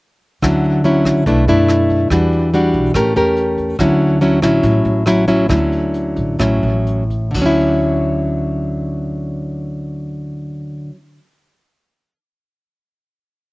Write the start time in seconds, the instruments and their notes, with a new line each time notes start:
0.42 upright bass D2, nylon-string guitar D3 F#3 C#4 E4, kick, cross-stick, closed hi-hat
0.64 closed hi-hat
0.84 nylon-string guitar F#3 C#4 E4, closed hi-hat
1.05 upright bass C#2, kick, cross-stick, closed hi-hat
1.26 upright bass B1, nylon-string guitar B2 A3 D4 E4, kick, closed hi-hat
1.48 upright bass F#2, nylon-string guitar A3 D4 E4, closed hi-hat
1.68 cross-stick, closed hi-hat
1.89 kick, closed hi-hat
2.10 upright bass E2, nylon-string guitar E3 G3 D4 F#4, kick, cross-stick, closed hi-hat
2.32 closed hi-hat
2.53 nylon-string guitar G3 D4 F#4, closed hi-hat
2.74 upright bass B1, kick, closed hi-hat
2.94 upright bass A1, nylon-string guitar A3 C#4 G4 A#4, kick, cross-stick, closed hi-hat
3.16 upright bass E2, nylon-string guitar C#4 G4 A#4, closed hi-hat
3.36 closed hi-hat
3.58 kick, closed hi-hat
3.79 upright bass D2, nylon-string guitar D3 F#3 C#4 E4, kick, cross-stick, closed hi-hat
4.00 closed hi-hat
4.21 nylon-string guitar F#3 C#4 E4, closed hi-hat
4.42 upright bass A1, nylon-string guitar F#3 C#4 E4, kick, cross-stick, closed hi-hat
4.63 upright bass A1, nylon-string guitar A2, kick, closed hi-hat
4.85 upright bass A1, closed hi-hat
5.06 nylon-string guitar F#3 C#4 E4, cross-stick, closed hi-hat
5.28 nylon-string guitar F#3 C#4 E4, kick, closed hi-hat
5.49 upright bass D2, nylon-string guitar D3 F#3 C#4 E4, kick, cross-stick, closed hi-hat
5.72 closed hi-hat
5.94 closed hi-hat
6.16 upright bass A1, kick, closed hi-hat
6.39 upright bass A1, nylon-string guitar A2 F#3 C#4 E4, kick, cross-stick, closed hi-hat
6.63 upright bass A1, closed hi-hat
6.87 closed hi-hat
7.10 kick, closed hi-hat
7.31 upright bass D2, nylon-string guitar D3, kick, crash
7.36 nylon-string guitar F#3
7.42 nylon-string guitar C#4
7.46 nylon-string guitar E4